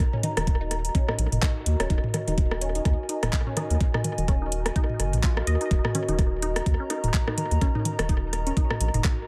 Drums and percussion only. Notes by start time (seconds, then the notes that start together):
0.00 kick, cross-stick, closed hi-hat
0.13 high tom
0.23 closed hi-hat, low conga
0.37 cross-stick, closed hi-hat, low conga
0.47 kick, closed hi-hat
0.71 cross-stick, closed hi-hat
0.85 closed hi-hat
0.95 kick, closed hi-hat
1.09 cross-stick, high tom
1.19 closed hi-hat
1.32 closed hi-hat, high tom
1.42 kick, cross-stick, clap, closed hi-hat
1.66 closed hi-hat
1.80 cross-stick, closed hi-hat
1.90 kick, closed hi-hat
2.04 high tom
2.14 cross-stick, closed hi-hat, low conga
2.28 closed hi-hat, low conga
2.38 kick, closed hi-hat
2.51 cross-stick
2.61 closed hi-hat
2.75 closed hi-hat
2.85 kick, cross-stick, closed hi-hat
3.09 closed hi-hat
3.23 cross-stick, closed hi-hat, high tom
3.33 kick, clap, closed hi-hat
3.47 high tom
3.57 cross-stick, closed hi-hat, low conga
3.70 closed hi-hat
3.81 kick, closed hi-hat
3.94 cross-stick, high tom
4.04 closed hi-hat, low conga
4.18 closed hi-hat, low conga
4.28 kick, cross-stick, closed hi-hat
4.52 closed hi-hat
4.66 cross-stick, closed hi-hat
4.76 kick, closed hi-hat
4.90 high tom
5.00 cross-stick, closed hi-hat
5.13 closed hi-hat, high tom
5.23 kick, clap, closed hi-hat
5.37 cross-stick
5.47 closed hi-hat
5.61 closed hi-hat
5.71 kick, closed hi-hat
5.85 cross-stick, high tom
5.95 closed hi-hat, low conga
6.09 closed hi-hat, low conga
6.19 kick, cross-stick, closed hi-hat
6.42 closed hi-hat
6.56 cross-stick, closed hi-hat
6.66 kick, closed hi-hat
6.90 cross-stick, closed hi-hat
7.04 closed hi-hat, high tom
7.14 kick, clap, closed hi-hat
7.28 cross-stick, high tom
7.38 closed hi-hat, low conga
7.51 closed hi-hat
7.61 kick, cross-stick, closed hi-hat
7.75 high tom
7.85 closed hi-hat, low conga
7.99 cross-stick, closed hi-hat, low conga
8.09 kick, closed hi-hat
8.33 cross-stick, closed hi-hat
8.47 closed hi-hat
8.57 kick, closed hi-hat
8.70 cross-stick, high tom
8.81 closed hi-hat
8.94 closed hi-hat, high tom
9.04 kick, cross-stick, clap, closed hi-hat